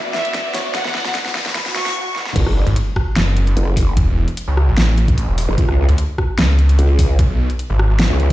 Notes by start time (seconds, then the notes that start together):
Already playing: B3 F#4 D5 E5, riser
0.14 E5, snare, closed hi-hat
0.25 closed hi-hat
0.34 kick, snare, closed hi-hat
0.54 C#5, snare, open hi-hat
0.75 F#5, kick, snare, closed hi-hat
0.85 snare
0.95 snare
1.05 snare, closed hi-hat
1.15 kick, snare, closed hi-hat
1.25 snare
1.35 snare
1.46 snare
1.55 B5, kick, snare, closed hi-hat, swell
1.66 snare
1.75 C#6, snare, closed hi-hat
1.86 snare, closed hi-hat
2.16 C#6, snare
2.26 snare
2.36 F#1, kick, closed hi-hat, crash, impact
2.47 cross-stick
2.67 G#1, closed hi-hat
2.76 closed hi-hat
2.96 kick, cross-stick
3.16 F#1, snare, closed hi-hat
3.37 closed hi-hat
3.47 closed hi-hat
3.57 F#1, closed hi-hat
3.77 kick, open hi-hat
3.97 E1, kick, closed hi-hat
4.28 closed hi-hat
4.37 closed hi-hat
4.48 C#2
4.57 cross-stick
4.68 A1
4.77 snare, closed hi-hat
4.98 closed hi-hat
5.08 kick, closed hi-hat
5.18 closed hi-hat
5.28 E1
5.38 open hi-hat
5.49 F#1
5.58 C#2, kick, closed hi-hat
5.69 cross-stick
5.89 D2, closed hi-hat
5.98 closed hi-hat
6.18 kick, cross-stick
6.38 C#2, snare, closed hi-hat
6.59 closed hi-hat
6.69 closed hi-hat
6.79 C#2, closed hi-hat
6.99 kick, open hi-hat
7.19 B1, kick, closed hi-hat
7.50 closed hi-hat
7.59 closed hi-hat
7.70 G#1
7.79 cross-stick
7.90 G#1
8.00 snare, closed hi-hat
8.10 C#2
8.20 closed hi-hat